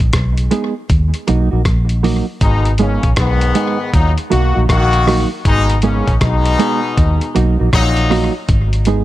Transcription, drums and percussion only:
0.00 kick medium
0.00 closed hi-hat medium
0.13 kick loud
0.13 cross-stick loud
0.13 closed hi-hat medium
0.38 closed hi-hat medium
0.51 closed hi-hat medium
0.90 kick loud
0.90 closed hi-hat medium
1.14 closed hi-hat medium
1.28 closed hi-hat medium
1.65 kick loud
1.65 cross-stick medium
1.65 closed hi-hat medium
1.89 closed hi-hat medium
2.04 open hi-hat medium
2.41 kick loud
2.41 closed hi-hat medium
2.65 closed hi-hat soft
2.78 closed hi-hat medium
3.03 kick medium
3.03 closed hi-hat medium
3.16 kick loud
3.16 cross-stick loud
3.16 closed hi-hat medium
3.41 closed hi-hat medium
3.55 closed hi-hat medium
3.94 kick loud
3.94 closed hi-hat medium
4.18 closed hi-hat medium
4.32 closed hi-hat medium
4.69 kick loud
4.69 cross-stick medium
4.69 closed hi-hat medium
4.93 closed hi-hat medium
5.08 cross-stick medium
5.08 open hi-hat medium
5.45 kick loud
5.45 closed hi-hat medium
5.70 closed hi-hat medium
5.82 closed hi-hat medium
6.07 kick medium
6.07 closed hi-hat medium
6.21 kick loud
6.21 cross-stick loud
6.21 closed hi-hat medium
6.46 closed hi-hat medium
6.60 closed hi-hat medium
6.97 kick loud
6.97 closed hi-hat medium
7.21 closed hi-hat soft
7.36 closed hi-hat medium
7.73 kick loud
7.73 cross-stick medium
7.73 closed hi-hat medium
7.97 closed hi-hat soft
8.11 cross-stick medium
8.11 open hi-hat medium
8.49 kick loud
8.49 closed hi-hat medium
8.73 closed hi-hat medium
8.85 closed hi-hat medium

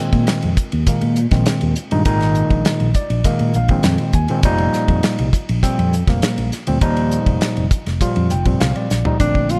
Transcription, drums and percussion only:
0.13 kick medium
0.13 ride medium
0.27 snare loud
0.27 hi-hat pedal medium
0.27 ride medium
0.42 ride medium
0.57 kick medium
0.57 hi-hat pedal medium
0.72 ride medium
0.87 kick medium
0.87 hi-hat pedal medium
0.87 ride medium
1.01 ride medium
1.16 hi-hat pedal medium
1.31 kick medium
1.31 snare soft
1.31 ride medium
1.46 snare loud
1.46 hi-hat pedal medium
1.46 ride medium
1.61 ride medium
1.76 hi-hat pedal medium
1.91 ride medium
2.05 kick loud
2.05 hi-hat pedal medium
2.05 ride medium
2.21 snare soft
2.21 ride soft
2.35 hi-hat pedal medium
2.50 kick medium
2.50 ride medium
2.65 snare loud
2.65 hi-hat pedal medium
2.65 ride medium
2.80 ride medium
2.94 kick medium
2.94 hi-hat pedal medium
3.10 ride medium
3.24 kick medium
3.24 hi-hat pedal medium
3.24 ride medium
3.39 ride medium
3.54 hi-hat pedal medium
3.68 kick medium
3.68 ride medium
3.83 snare loud
3.83 hi-hat pedal medium
3.83 ride medium
3.98 ride medium
4.13 kick medium
4.13 hi-hat pedal medium
4.28 ride medium
4.43 kick loud
4.43 hi-hat pedal medium
4.43 ride medium
4.58 ride medium
4.73 snare soft
4.73 hi-hat pedal medium
4.88 kick medium
4.88 ride medium
5.03 snare loud
5.03 hi-hat pedal medium
5.03 ride medium
5.19 ride medium
5.33 kick medium
5.33 hi-hat pedal medium
5.49 ride medium
5.63 kick medium
5.63 hi-hat pedal medium
5.63 ride medium
5.79 ride medium
5.93 hi-hat pedal medium
6.07 kick medium
6.07 snare soft
6.07 ride medium
6.22 snare loud
6.22 hi-hat pedal medium
6.22 ride medium
6.38 ride medium
6.52 snare soft
6.52 hi-hat pedal medium
6.67 ride medium
6.81 kick loud
6.81 hi-hat pedal medium
6.81 ride medium
6.97 ride medium
7.11 hi-hat pedal medium
7.26 kick medium
7.26 ride medium
7.41 snare loud
7.41 hi-hat pedal medium
7.41 ride medium
7.57 ride medium
7.71 kick medium
7.71 hi-hat pedal medium
7.86 snare soft
7.86 ride medium
8.01 kick medium
8.01 hi-hat pedal medium
8.01 ride medium
8.16 ride medium
8.30 hi-hat pedal medium
8.45 kick medium
8.45 ride medium
8.60 snare loud
8.60 hi-hat pedal medium
8.60 ride medium
8.76 ride medium
8.90 snare medium
8.90 hi-hat pedal medium
9.05 floor tom medium
9.20 kick medium
9.20 hi-hat pedal medium
9.20 ride medium
9.35 kick medium
9.49 hi-hat pedal medium
9.49 ride medium

